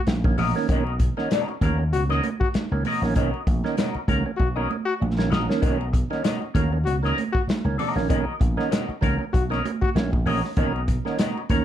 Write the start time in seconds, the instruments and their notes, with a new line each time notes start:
0.06 slap bass A#1, muted clean electric guitar stroke, snare, closed hi-hat, muted conga, high conga
0.24 tonewheel organ D#3 A#3 C#4, muted clean electric guitar stroke, kick, muted conga
0.38 slap bass A#1, tonewheel organ B2, clean electric guitar C#4 F#4 A#4 D#5, open hi-hat, high conga, low conga
0.56 tonewheel organ D#3 A#3 C#4, muted clean electric guitar stroke, snare
0.68 slap bass B1, tonewheel organ D#3 A#3 C#4, clean electric guitar C#4 F#4 A#4 D#5, kick, closed hi-hat, muted conga, low conga
0.87 muted conga
0.99 tonewheel organ B2, muted clean electric guitar stroke, kick, closed hi-hat
1.17 tonewheel organ D#3 A#3 C#4, clean electric guitar C#4 F#4 A#4 D#5, snare
1.31 tonewheel organ B2, clean electric guitar C#4 F#4 A#4 D#5, snare, closed hi-hat, high conga
1.48 muted clean electric guitar stroke, muted conga
1.61 slap bass D#2, tonewheel organ D#3 A#3 C#4, clean electric guitar C#4 F#4 A#4 F5, kick, closed hi-hat, high conga, low conga
1.78 tonewheel organ A#3 C#4, muted clean electric guitar stroke
1.93 slap bass C#2, tonewheel organ B2, trombone F#4, muted clean electric guitar stroke, closed hi-hat
2.09 tonewheel organ D#3 A#3 C#4, clean electric guitar C#4 F#4 A#4 D#5, snare, muted conga
2.23 tonewheel organ A#3 C#4, muted clean electric guitar stroke, closed hi-hat, high conga
2.40 trombone F#4, muted clean electric guitar stroke, kick
2.54 muted slap bass stroke, muted clean electric guitar stroke, snare, closed hi-hat, muted conga, high conga
2.71 slap bass C#2, tonewheel organ D#3 A#3 C#4, muted clean electric guitar stroke
2.85 tonewheel organ B2, clean electric guitar C#4 F#4 A#4 D#5, open hi-hat, high conga, low conga
3.02 slap bass A#1, tonewheel organ D#3 A#3 C#4, muted clean electric guitar stroke, snare
3.15 slap bass B1, tonewheel organ D#3 A#3 C#4, clean electric guitar C#4 F#4 A#4 D#5, kick, closed hi-hat, muted conga
3.34 muted conga
3.47 slap bass A#1, tonewheel organ B2, muted clean electric guitar stroke, kick, closed hi-hat, high conga
3.64 tonewheel organ D#3 A#3 C#4, clean electric guitar C#4 F#4 A#4 D#5, snare
3.77 tonewheel organ B2, clean electric guitar C#4 F#4 A#4 D#5, snare, closed hi-hat, muted conga, high conga
3.95 muted slap bass stroke, muted clean electric guitar stroke, muted conga
4.08 slap bass C#2, tonewheel organ D#3 A#3 C#4, clean electric guitar C#4 F#4 A#4 F5, kick, closed hi-hat, high conga, low conga
4.26 tonewheel organ A#3 C#4, muted clean electric guitar stroke
4.37 slap bass B1, tonewheel organ B2, trombone F#4, muted clean electric guitar stroke, kick, muted conga
4.56 tonewheel organ D#3 A#3 C#4, clean electric guitar C#4 F#4 A#4 D#5
4.69 tonewheel organ A#3 C#4, muted clean electric guitar stroke, high conga
4.85 trombone F#4, muted clean electric guitar stroke
5.00 slap bass A#1, muted clean electric guitar stroke, muted conga, high conga
5.18 tonewheel organ D#3 A#3 C#4, muted clean electric guitar stroke, snare, muted conga
5.30 slap bass A#1, tonewheel organ B2, clean electric guitar C#4 F#4 A#4 D#5, snare, high conga, low conga
5.48 tonewheel organ D#3 A#3 C#4, muted clean electric guitar stroke, snare
5.61 slap bass B1, tonewheel organ D#3 A#3 C#4, clean electric guitar C#4 F#4 A#4 D#5, kick, closed hi-hat, low conga
5.81 muted conga
5.93 tonewheel organ B2, muted clean electric guitar stroke, kick, closed hi-hat
6.10 tonewheel organ D#3 A#3 C#4, clean electric guitar C#4 F#4 A#4 D#5, snare
6.24 tonewheel organ B2, clean electric guitar C#4 F#4 A#4 D#5, snare, closed hi-hat, muted conga, high conga
6.41 muted clean electric guitar stroke, muted conga
6.54 slap bass D#2, tonewheel organ D#3 A#3 C#4, clean electric guitar C#4 F#4 A#4 F5, kick, closed hi-hat, high conga, low conga
6.73 tonewheel organ A#3 C#4, muted clean electric guitar stroke
6.85 slap bass C#2, tonewheel organ B2, trombone F#4, muted clean electric guitar stroke, closed hi-hat, muted conga
7.03 tonewheel organ D#3 A#3 C#4, clean electric guitar C#4 F#4 A#4 D#5, snare, muted conga
7.17 tonewheel organ A#3 C#4, muted clean electric guitar stroke, closed hi-hat, high conga
7.33 trombone F#4, muted clean electric guitar stroke, kick
7.47 muted slap bass stroke, muted clean electric guitar stroke, snare, closed hi-hat, muted conga, high conga
7.65 slap bass C#2, tonewheel organ D#3 A#3 C#4, muted clean electric guitar stroke, muted conga
7.78 tonewheel organ B2, clean electric guitar C#4 F#4 A#4 D#5, open hi-hat, high conga, low conga
7.96 slap bass A#1, tonewheel organ D#3 A#3 C#4, muted clean electric guitar stroke, snare
8.09 slap bass B1, tonewheel organ D#3 A#3 C#4, clean electric guitar C#4 F#4 A#4 D#5, kick, closed hi-hat, muted conga, low conga
8.40 slap bass A#1, tonewheel organ B2, muted clean electric guitar stroke, kick, closed hi-hat
8.57 tonewheel organ D#3 A#3 C#4, clean electric guitar C#4 F#4 A#4 D#5, snare
8.70 tonewheel organ B2, clean electric guitar C#4 F#4 A#4 D#5, snare, closed hi-hat, high conga
8.89 muted slap bass stroke, muted clean electric guitar stroke, muted conga
9.01 slap bass C#2, tonewheel organ D#3 A#3 C#4, clean electric guitar C#4 F#4 A#4 F5, kick, closed hi-hat, high conga, low conga
9.19 tonewheel organ A#3 C#4, muted clean electric guitar stroke
9.33 slap bass B1, tonewheel organ B2, trombone F#4, muted clean electric guitar stroke, kick, closed hi-hat
9.50 tonewheel organ D#3 A#3 C#4, clean electric guitar C#4 F#4 A#4 D#5, snare, muted conga
9.64 tonewheel organ A#3 C#4, muted clean electric guitar stroke, closed hi-hat, high conga
9.82 trombone F#4, muted clean electric guitar stroke, kick
9.95 slap bass A#1, tonewheel organ A#3 C#4, muted clean electric guitar stroke, snare, closed hi-hat, high conga
10.12 tonewheel organ B2, muted clean electric guitar stroke, kick, muted conga
10.26 slap bass A#1, tonewheel organ A#3 C#4, clean electric guitar C#4 F#4 A#4 D#5, open hi-hat, high conga, low conga
10.44 muted clean electric guitar stroke, snare
10.57 slap bass B1, tonewheel organ D#3 A#3 C#4, clean electric guitar C#4 F#4 A#4 D#5, kick, closed hi-hat, low conga
10.76 muted conga
10.88 tonewheel organ B2, muted clean electric guitar stroke, kick, closed hi-hat
11.05 tonewheel organ D#3 A#3 C#4, clean electric guitar C#4 F#4 A#4 D#5, snare
11.19 tonewheel organ B2, clean electric guitar C#4 F#4 A#4 D#5, snare, closed hi-hat, high conga
11.38 muted clean electric guitar stroke, muted conga
11.49 slap bass D#2, tonewheel organ D#3 A#3 C#4, clean electric guitar C#4 F#4 A#4 F5, kick, closed hi-hat, high conga, low conga